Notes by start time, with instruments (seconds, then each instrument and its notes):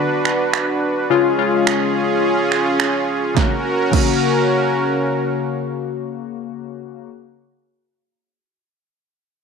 Already playing: supersaw synth D4 F#4 B4
0.25 finger snap
0.53 finger snap
1.10 synth keys C#3 G#3 F4, supersaw synth C#4 F4 G#4
1.38 synth keys C#3 G#3 F4
1.67 finger snap
2.52 finger snap
2.80 finger snap
3.34 synth keys C#3 A#3, supersaw synth C#4 F#4 A#4, kick, snare
3.39 synth keys F#4
3.91 synth keys C#3 A#3 F#4, kick, crash